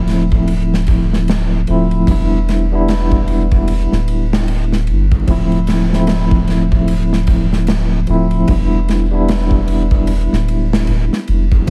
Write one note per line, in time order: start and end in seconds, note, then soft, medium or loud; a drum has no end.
0.00 1.65 D1 medium
0.00 1.68 F3 medium
0.00 1.69 A3 medium
0.00 1.70 C4 medium
0.00 1.71 E4 medium
0.08 snare soft
0.08 ride medium
0.32 kick medium
0.48 ride medium
0.74 snare medium
0.87 kick medium
0.87 ride medium
1.13 snare soft
1.28 snare loud
1.28 ride medium
1.67 2.04 D1 medium
1.67 2.04 F3 medium
1.67 2.04 A3 medium
1.67 2.05 C4 medium
1.67 2.05 E4 medium
1.67 ride medium
1.91 ride soft
2.07 3.87 E1 medium
2.07 2.66 G3 medium
2.07 2.66 B3 medium
2.07 2.67 D4 medium
2.07 2.67 E4 medium
2.07 kick medium
2.07 ride medium
2.49 snare soft
2.49 ride medium
2.72 3.01 G3 medium
2.72 3.01 B3 medium
2.72 3.02 D4 medium
2.72 3.03 E4 loud
2.88 snare loud
2.88 ride medium
3.12 kick medium
3.28 ride medium
3.52 kick medium
3.68 ride medium
3.92 4.89 D1 loud
3.92 snare soft
4.08 ride medium
4.33 snare loud
4.48 ride medium
4.72 snare medium
4.87 5.24 G1 loud
4.87 ride medium
5.12 kick medium
5.27 8.05 D1 medium
5.27 5.86 F3 medium
5.27 5.86 A3 medium
5.27 5.87 C4 medium
5.27 5.87 E4 medium
5.27 kick loud
5.27 ride medium
5.52 ride soft
5.67 snare medium
5.67 ride medium
5.89 8.02 F3 medium
5.89 8.03 A3 medium
5.93 8.05 C4 medium
5.93 8.06 E4 medium
5.93 snare soft
6.07 snare loud
6.07 ride medium
6.31 kick loud
6.47 snare soft
6.47 ride medium
6.72 kick medium
6.88 ride medium
7.13 snare medium
7.27 kick medium
7.27 ride medium
7.53 snare medium
7.67 snare loud
7.67 ride medium
8.07 8.44 D1 medium
8.07 8.43 F3 medium
8.07 8.44 A3 medium
8.07 8.45 C4 medium
8.07 8.45 E4 medium
8.07 ride medium
8.31 ride soft
8.47 10.27 E1 medium
8.47 9.05 G3 medium
8.47 9.06 B3 medium
8.47 9.07 D4 medium
8.47 9.07 E4 medium
8.47 kick loud
8.47 ride medium
8.89 snare medium
8.89 ride medium
9.11 9.41 G3 medium
9.11 9.41 B3 medium
9.11 9.42 D4 medium
9.11 9.42 E4 medium
9.29 snare loud
9.29 ride medium
9.51 kick medium
9.68 ride medium
9.91 kick loud
10.07 ride medium
10.32 10.88 D1 medium
10.32 snare soft
10.48 ride medium
10.73 snare loud
10.87 11.09 D1 loud
10.87 ride medium
11.13 snare soft
11.28 11.64 F1 loud
11.28 ride medium
11.52 kick loud
11.67 11.70 F3 medium